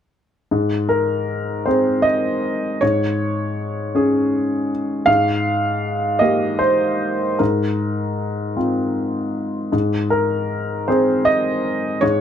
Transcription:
0.51 G#2
0.89 A#4
1.66 C4 G#4 C5
2.02 D#5
2.81 G#2 C#5
3.95 C#4 G#4
5.06 G#2 F5
6.19 A#3 G4 D#5
6.59 C5
7.39 G#2 A#4
8.56 C4 F4
9.72 G#2
10.10 A#4
10.88 C4 G#4 C5
11.25 D#5
12.01 G#2 C#5

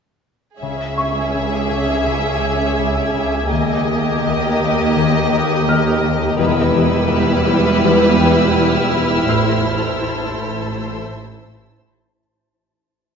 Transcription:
0.60 C#2 C#3 C#4 G#4 E5 G#5 G#6
0.98 C#4 C#6
1.34 C#3 D6
1.71 C#3
2.06 C#3
2.42 C#3
2.78 C#3
3.14 C#3
3.48 D#2 D#3 A#3 G4 A#4 D#5
3.87 D#4
4.23 D#3
4.60 D#3
4.95 D#3
5.31 D#3
5.67 D#3 F6
6.03 D#3
6.38 E1 E2 G3 E4 B4 E6
6.75 E3
7.12 E2 F6
7.49 E2
7.84 E2
8.19 E2 G5
8.57 E2
8.93 E2
9.28 A1 A2 A3 E4 C5 A5 E6
9.65 A3
10.01 A2
10.38 A2
10.62 E6
10.73 A2
11.09 A2
11.45 A2
11.82 A2

